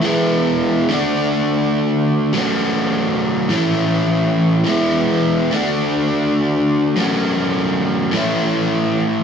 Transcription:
\new Staff \with { instrumentName = "Overdriven electric guitar" } { \time 4/4 \key a \major \tempo 4 = 104 <e gis b e'>4. <d a d' fis'>2~ <d a d' fis'>8 | <fis a cis' fis'>2 <a, e a cis' e'>2 | <e gis b e'>4. <d a d' fis'>2~ <d a d' fis'>8 | <fis a cis' fis'>2 <a, e a cis' e'>2 | }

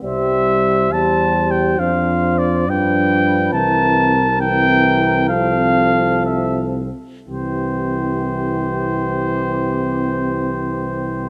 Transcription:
<<
  \new Staff \with { instrumentName = "Trumpet" } { \time 6/8 \key c \major \tempo 4. = 66 e''4. a''4 g''8 | f''4 d''8 g''4. | a''4. g''4. | f''4. e''8 r4 |
c''2.~ | c''2. | }
  \new Staff \with { instrumentName = "Flugelhorn" } { \time 6/8 \key c \major c''4. c''4. | c''4. b'4. | bes'4. bes'4. | a'2~ a'8 r8 |
g'2.~ | g'2. | }
  \new Staff \with { instrumentName = "French horn" } { \time 6/8 \key c \major g'4. g'4. | d'4. d'4. | c'4. c'4. | c'2~ c'8 r8 |
c'2.~ | c'2. | }
  \new Staff \with { instrumentName = "Euphonium" } { \clef bass \time 6/8 \key c \major g4. g4. | f4. f4. | e4. e4. | f2~ f8 r8 |
e2.~ | e2. | }
  \new Staff \with { instrumentName = "Tuba" } { \clef bass \time 6/8 \key c \major c,4. e,4. | f,4. g,4. | c,2.~ | c,2~ c,8 r8 |
c,2.~ | c,2. | }
>>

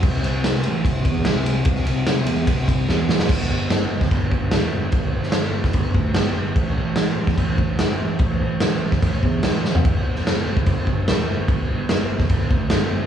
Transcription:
<<
  \new Staff \with { instrumentName = "Picked electric bass" } { \clef bass \time 4/4 \key c \major \tempo 4 = 147 c,8 c,8 c,8 a,,8 c,8 e,8 c,8 c,8 | c,8 c,8 c,8 e,8 c,8 c,8 e,8 a,,8 | \key a \dorian g,,8 g,,8 g,,8 g,,8 g,,8 g,,8 e,,8 g,,8 | g,,8 g,,8 g,,4 g,,8 d,8 g,,8 g,,8 |
a,,8 a,,8 a,,8 a,,8 a,,8 a,,8 g,,8 a,,8 | a,,8 a,,8 a,,4 a,,8 e,8 a,,8 a,,8 | g,,8 g,,8 g,,8 g,,8 g,,8 g,,8 e,,8 g,,8 | g,,8 g,,8 g,,4 g,,8 d,8 g,,8 g,,8 | }
  \new DrumStaff \with { instrumentName = "Drums" } \drummode { \time 4/4 <cymc bd>8 cymr8 <cymr sn>16 sn16 cymr8 <bd cymr>8 <bd cymr>8 <cymr sn>8 cymr8 | <bd cymr>16 sn16 cymr8 <cymr sn>16 sn16 cymr8 <bd cymr>8 <bd cymr>8 sn8 sn16 sn16 | <cymc bd>4 <cymc sn>8. <bd sn>16 <cymc bd>8 bd8 <cymc sn>4 | <cymc bd>8. sn16 <cymc sn>8. <bd sn>16 <cymc bd>8 bd8 <cymc sn>4 |
<cymc bd>4 <cymc sn>8. <bd sn>16 <cymc bd>8 bd8 <cymc sn>4 | <cymc bd>4 <cymc sn>8. <bd sn>16 <cymc bd>8 bd8 <cymc sn>8 sn16 tomfh16 | <cymc bd>8. sn16 <cymc sn>8. bd16 <cymc bd>8 bd8 <cymc sn>4 | <cymc bd>4 <cymc sn>8. <bd sn>16 <cymc bd>8 bd8 <cymc sn>4 | }
>>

